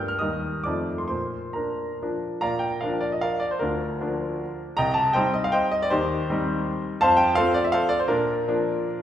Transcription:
0.00 0.19 G2 medium
0.00 0.16 G3 soft
0.00 0.17 A#3 soft
0.00 0.17 D4 soft
0.00 0.22 G5 medium
0.00 0.22 G6 medium
0.08 0.20 F6 medium
0.19 0.64 D#2 medium
0.19 0.61 G3 soft
0.19 0.61 A#3 soft
0.19 0.61 D#4 soft
0.19 0.61 D#5 medium
0.19 0.64 D#6 medium
0.64 1.09 F2 medium
0.64 1.06 F3 soft
0.64 1.06 A3 soft
0.64 1.06 D#4 soft
0.64 0.96 D5 soft
0.64 0.97 D6 medium
0.98 1.06 C6 medium
1.08 1.54 A#2 soft
1.08 1.52 C5 soft
1.08 1.54 C6 medium
1.53 1.97 A#3 soft
1.53 1.97 D4 soft
1.53 1.97 A#4 soft
1.53 2.00 A#5 soft
2.02 2.40 F3 soft
2.02 2.40 A#3 soft
2.02 2.40 D4 soft
2.41 2.82 A#2 medium
2.41 2.61 D5 medium
2.41 2.61 F5 medium
2.41 2.62 A#5 medium
2.59 2.81 G5 medium
2.81 3.58 F3 medium
2.81 3.57 A#3 medium
2.81 3.58 D4 medium
2.81 3.01 A#4 medium
2.81 2.99 D5 medium
2.81 3.02 F5 medium
3.01 3.12 D5 medium
3.12 3.22 D#5 medium
3.21 3.41 A#4 medium
3.21 3.38 D5 medium
3.21 3.42 F5 medium
3.40 3.51 D5 medium
3.51 3.61 C5 medium
3.59 4.00 D2 medium
3.59 4.00 D4 medium
3.59 4.56 F4 medium
3.59 4.59 A#4 medium
4.01 4.75 F3 medium
4.01 4.75 A#3 medium
4.01 4.75 D4 medium
4.77 5.15 C2 medium
4.77 4.95 D#5 medium
4.77 4.95 G5 medium
4.77 4.96 A#5 loud
4.94 5.15 A5 medium
5.13 5.88 G3 medium
5.13 5.89 C4 medium
5.13 5.89 D#4 medium
5.13 5.34 C5 medium
5.13 5.32 D#5 medium
5.13 5.35 G5 loud
5.34 5.45 D#5 medium
5.44 5.55 F5 medium
5.52 5.72 C5 medium
5.52 5.70 D#5 medium
5.52 5.73 G5 loud
5.72 5.82 D#5 loud
5.82 5.92 D5 medium
5.90 6.29 D#2 medium
5.90 6.29 D#4 medium
5.90 6.80 G4 medium
5.90 6.83 C5 medium
6.30 6.98 G3 medium
6.30 6.98 C4 medium
6.30 6.99 D#4 medium
7.01 7.38 F2 medium
7.01 7.18 C5 medium
7.01 7.18 F5 medium
7.01 7.19 A5 loud
7.17 7.37 G5 loud
7.35 8.06 F3 medium
7.35 8.06 C4 medium
7.35 7.55 A4 medium
7.35 7.55 C5 medium
7.35 7.56 F5 loud
7.54 7.65 D5 loud
7.64 7.74 E5 medium
7.72 7.91 A4 medium
7.72 7.91 C5 medium
7.72 7.91 F5 loud
7.89 7.99 D5 loud
8.00 8.09 C5 medium
8.08 8.46 A#2 medium
8.08 8.47 D4 medium
8.08 8.99 F4 medium
8.08 9.02 A#4 medium
8.48 9.02 F3 medium
8.48 9.02 A#3 medium
8.48 9.02 D4 medium

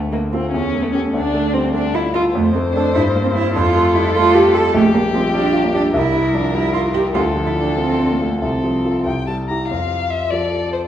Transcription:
0.00 0.51 D2 medium
0.12 0.45 A3 medium
0.12 0.20 A#3 medium
0.12 0.21 A#3 medium
0.32 0.51 C4 medium
0.32 0.41 C4 medium
0.32 0.52 F4 soft
0.32 0.52 A4 medium
0.52 1.12 E2 medium
0.52 0.84 C#4 medium
0.52 0.86 C#4 medium
0.74 1.06 A3 soft
0.83 0.92 A3 medium
0.83 0.95 A3 medium
0.93 1.01 C#4 medium
0.93 1.14 C#4 medium
0.93 1.12 G4 medium
0.93 1.12 A4 medium
1.14 2.31 D2 medium
1.14 1.55 D4 medium
1.14 1.56 D4 medium
1.34 1.66 A3 medium
1.54 1.74 G3 soft
1.54 1.73 C4 medium
1.74 2.06 A3 medium
1.74 1.97 D4 medium
1.74 1.82 D4 medium
1.94 2.02 E4 medium
1.94 2.14 E4 medium
1.94 2.27 F4 medium
2.14 2.22 F4 loud
2.14 2.23 F4 medium
2.14 2.35 A4 medium
2.34 2.93 F2 medium
2.34 2.52 A3 loud
2.34 3.51 C5 medium
2.53 2.87 A3 medium
2.53 2.61 C4 medium
2.73 2.94 C4 medium
2.73 2.94 D4 loud
2.73 2.94 A4 medium
2.94 3.54 G2 medium
2.94 3.02 E4 loud
3.15 3.48 A#3 medium
3.24 3.28 C4 loud
3.34 3.53 C4 medium
3.34 3.54 E4 loud
3.34 3.54 C5 medium
3.55 4.71 F2 medium
3.55 3.96 F4 loud
3.55 4.72 A4 medium
3.75 4.07 A3 medium
3.95 4.15 G3 medium
3.95 4.14 E4 loud
4.15 4.47 A3 medium
4.15 4.36 F4 loud
4.35 4.67 F4 medium
4.35 4.55 G4 loud
4.54 4.74 A4 loud
4.54 4.74 A4 medium
4.74 5.91 A#1 medium
4.74 4.83 A3 loud
4.74 5.92 G4 medium
4.94 5.26 G3 medium
4.94 5.02 A#3 medium
5.14 5.34 F3 medium
5.14 5.22 C4 loud
5.34 5.66 G3 medium
5.34 5.67 D4 loud
5.53 5.86 F4 medium
5.65 5.73 A#3 medium
5.74 5.82 D4 loud
5.74 5.94 G4 medium
5.94 7.12 C2 medium
5.94 6.36 E4 loud
5.94 7.13 A#4 medium
6.15 6.47 G3 medium
6.34 6.55 F3 soft
6.34 6.56 D4 medium
6.54 6.87 G3 medium
6.54 6.73 E4 loud
6.74 7.07 E4 medium
6.74 6.82 F4 medium
6.94 7.15 G4 medium
6.94 7.02 G4 loud
7.15 8.38 D2 medium
7.15 7.23 F4 loud
7.15 8.39 A4 medium
7.36 7.70 F3 medium
7.46 7.51 E4 medium
7.57 7.79 E3 soft
7.57 7.77 D4 medium
7.78 8.12 F3 soft
7.78 8.12 C4 medium
8.00 8.34 D4 medium
8.11 8.22 A#3 medium
8.20 8.41 A3 medium
8.20 8.43 F4 medium
8.42 9.04 C2 medium
8.42 9.05 C4 medium
8.42 9.05 A4 medium
8.64 8.98 F3 soft
8.85 9.04 F4 soft
8.85 9.04 A4 soft
9.06 9.68 C2 medium
9.06 9.26 G5 medium
9.27 9.62 G3 soft
9.27 9.35 A5 medium
9.48 9.69 E4 soft
9.48 9.69 G4 medium
9.48 9.68 A#5 medium
9.68 10.31 F2 soft
9.68 10.35 F4 medium
9.68 10.12 F5 medium
10.11 10.32 E5 medium
10.31 10.88 F3 soft
10.31 10.88 F4 soft
10.31 10.88 A4 soft
10.31 10.88 A4 medium
10.31 10.72 D5 medium
10.73 10.81 C5 soft

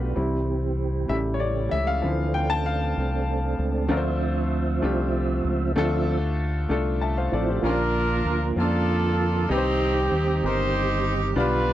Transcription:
0.00 0.14 B1 medium
0.00 0.12 A3 medium
0.00 0.14 A3 medium
0.00 0.12 B3 soft
0.00 0.15 B3 medium
0.00 0.14 D4 medium
0.00 0.12 F4 medium
0.00 0.19 F#4 medium
0.00 0.12 G4 medium
0.00 1.08 G4 medium
0.00 0.19 B4 medium
0.15 1.06 C2 medium
0.15 1.09 E3 medium
0.15 0.57 G3 medium
0.15 1.09 G3 medium
0.15 0.58 C4 soft
0.15 1.09 C4 medium
0.15 0.58 E4 medium
1.08 1.68 A1 loud
1.08 1.99 C#3 soft
1.08 2.03 C#3 medium
1.08 2.03 E3 medium
1.08 1.98 G3 soft
1.08 2.01 A3 medium
1.08 1.99 E4 medium
1.08 2.02 G4 medium
1.08 1.15 E5 medium
1.34 1.41 C#5 medium
1.40 1.72 D5 medium
1.71 2.01 C#2 medium
1.71 1.88 E5 medium
1.87 2.35 F5 medium
2.01 2.93 D2 medium
2.01 2.93 E3 medium
2.01 2.92 F3 medium
2.01 3.87 A3 medium
2.01 3.87 C4 medium
2.01 2.92 C4 soft
2.01 3.87 D4 medium
2.01 3.88 A4 medium
2.34 2.50 G5 medium
2.50 2.66 A5 medium
2.66 3.55 F5 medium
2.97 3.55 C2 medium
3.59 3.87 C#2 medium
3.88 4.79 D2 loud
3.88 4.79 D3 medium
3.88 5.72 F3 medium
3.88 4.70 A3 medium
3.88 5.72 C4 soft
3.88 4.70 D4 medium
3.88 4.70 F4 medium
3.88 3.97 A#4 medium
3.88 5.73 E5 medium
3.97 4.74 C5 medium
4.82 5.41 C2 medium
4.82 5.63 A3 medium
4.82 5.63 D4 medium
4.82 5.63 F4 medium
4.82 5.64 G4 medium
5.45 5.74 C#2 medium
5.76 6.65 D2 loud
5.76 6.66 D3 medium
5.76 6.18 F3 medium
5.76 6.56 A3 medium
5.76 6.18 C4 medium
5.76 6.57 D4 medium
5.76 6.57 F4 medium
5.76 6.57 A4 loud
5.76 6.18 E5 medium
6.69 7.28 C2 medium
6.69 7.50 A3 medium
6.69 7.50 D4 medium
6.69 7.50 F4 medium
6.69 7.02 A4 medium
7.01 7.16 E5 soft
7.01 7.16 A5 medium
7.17 7.32 C5 medium
7.17 7.32 F5 medium
7.32 7.61 A1 medium
7.32 7.60 F3 soft
7.32 7.60 C4 soft
7.32 7.60 E4 soft
7.32 7.48 A4 medium
7.32 7.47 D5 medium
7.49 7.78 G4 soft
7.49 7.78 C5 medium
7.62 8.21 A#1 medium
7.62 8.53 A#2 medium
7.62 9.47 D3 medium
7.62 9.47 F3 medium
7.62 9.47 A#3 medium
7.62 7.70 C#4 medium
7.62 8.53 D4 medium
7.62 9.47 F4 medium
7.62 8.44 F4 medium
7.62 8.53 F4 medium
7.62 8.53 A#4 medium
7.62 8.44 A#4 medium
7.69 8.46 D4 medium
8.25 8.54 D2 medium
8.56 9.46 F2 medium
8.56 9.37 A#3 medium
8.56 8.63 C4 medium
8.56 9.47 D4 medium
8.56 9.37 F4 medium
8.56 9.47 F4 medium
8.56 9.51 A4 medium
8.62 9.40 D4 medium
9.48 10.08 C2 loud
9.48 10.39 C3 medium
9.48 11.34 D#3 medium
9.48 11.73 G3 medium
9.48 11.34 C4 medium
9.48 10.40 C4 medium
9.48 10.30 D#4 medium
9.48 10.40 D#4 medium
9.48 11.34 G4 medium
9.48 10.30 G4 medium
9.48 10.44 G4 medium
9.48 9.57 B4 medium
9.57 10.34 C5 medium
10.12 10.40 D#2 medium
10.43 11.33 G1 medium
10.43 11.23 D#4 medium
10.43 11.34 D#4 medium
10.43 11.24 G4 medium
10.43 11.34 G4 medium
10.43 11.24 A#4 medium
10.43 11.14 C5 loud
11.36 11.73 B1 loud
11.36 11.73 B2 medium
11.36 11.73 D3 medium
11.36 11.73 B3 medium
11.36 11.73 D4 medium
11.36 11.73 F4 medium
11.36 11.73 G4 medium
11.36 11.73 B4 loud
11.36 11.73 D5 medium
11.40 11.73 D4 medium

